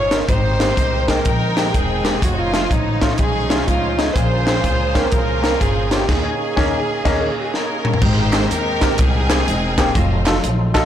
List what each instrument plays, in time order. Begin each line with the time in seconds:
Already playing: upright bass G1, tonewheel organ F3 C#4 D#4 G#4, string section C#4 F4 G#4 C#5 D#5 F5, alto saxophone C#5
0.11 grand piano C#4 D#4 F4 A#4, snare, closed hi-hat
0.28 upright bass G#1, grand piano G#2, tonewheel organ G#3 B3 A#4 G5, string section D#4 G4 C5 G5 A#5, alto saxophone C5, kick, closed hi-hat
0.33 tonewheel organ C4
0.60 grand piano G#3 A#3 C4 G4, snare, closed hi-hat
0.77 upright bass C2, kick, closed hi-hat
1.08 grand piano G#3 A#3 C4 G#4, alto saxophone A#4, kick, snare, closed hi-hat
1.25 upright bass A#1, string section D#4 A#4 G5, kick, closed hi-hat
1.56 grand piano G#3 A#3 C4 G4, snare, closed hi-hat
1.69 alto saxophone G4
1.74 upright bass E1, string section C4 D#4 G#4, alto saxophone G#4, kick, closed hi-hat
2.04 grand piano G#3 A#3 C4 G4, snare, closed hi-hat
2.21 upright bass F1, tonewheel organ F3 D#4 F4 C#5, string section A3 C#4 D#4 F#4 D#5 F5, alto saxophone F#4, kick, closed hi-hat
2.39 string section G#3 A3 F4, alto saxophone F4
2.53 grand piano A3 C#4 D#4 F4, snare, closed hi-hat
2.71 upright bass A1, string section G#3 A3 D#4, alto saxophone D#4, kick, closed hi-hat
3.01 grand piano A3 C#4 D#4 F4, kick, snare, closed hi-hat
3.18 upright bass B1, string section C#4 D#4 G#4, alto saxophone G#4, kick, closed hi-hat
3.50 grand piano A3 C#4 D#4 F4, snare, closed hi-hat
3.67 upright bass C#2, string section G#3 A3 F4, alto saxophone F4, kick, closed hi-hat
3.98 grand piano A3 C#4 D#4 G#4, snare, closed hi-hat
4.14 upright bass A#1, grand piano A#2, tonewheel organ A#3 C#4 G#4 C5, string section F4 G#4 C5 G#5 A#5, alto saxophone C5, kick, closed hi-hat
4.46 grand piano A#3 C4 C#4 G#4, snare, closed hi-hat
4.64 upright bass C#2, kick, closed hi-hat
4.95 grand piano A#3 C4 C#4 A#4, kick, snare, closed hi-hat
5.11 upright bass C2, string section C#4 F4 A#4, alto saxophone A#4, kick, closed hi-hat
5.42 grand piano A#3 C4 C#4 A#4, snare, closed hi-hat
5.60 upright bass G1, string section G#4, alto saxophone G#4, kick, closed hi-hat
5.91 grand piano A#3 C4 C#4 F4, alto saxophone G4, string section G4, snare, closed hi-hat
6.08 upright bass D#2, tonewheel organ A#3 D#4 G#4 C#5, string section C#4 G#4 D#5 G#5, alto saxophone G#4, kick, snare, crash
6.56 upright bass D#2, grand piano A#3 C#4 D#4 G#4, kick, snare
7.05 upright bass D#2, grand piano A#3 C#4 D#4 G#4, kick, snare, crash
7.21 alto saxophone A#4
7.33 alto saxophone G#4
7.38 alto saxophone G4, string section G#4
7.47 alto saxophone G#4
7.54 string section C#4 A#4, snare
7.85 mid tom
7.94 floor tom
8.01 upright bass G#1, grand piano G#2, tonewheel organ G#3 C4 A#4 G5, string section D#4 G4 C5, kick, crash
8.33 grand piano A#3 C4 G4 G#4, snare, clap, closed hi-hat
8.50 upright bass D#2, string section D#4 G4 A#4, closed hi-hat
8.81 grand piano A#3 C4 G4 A#4, kick, snare, clap, closed hi-hat
8.98 upright bass C2, string section C4 D#4 G#4, kick, closed hi-hat
9.29 grand piano A#3 C4 G4 G#4, snare, clap, closed hi-hat
9.47 upright bass E1, closed hi-hat
9.78 grand piano A#3 C4 G4 G#4, kick, snare, clap, closed hi-hat
9.95 upright bass F1, tonewheel organ F#3 D#4 F4 A4, string section A3 C4 F4, kick, closed hi-hat
10.26 grand piano D#4 F4 F#4 A4, snare, clap, closed hi-hat
10.44 upright bass A#1, closed hi-hat
10.74 grand piano D#4 F4 F#4 A4, kick, snare, clap, closed hi-hat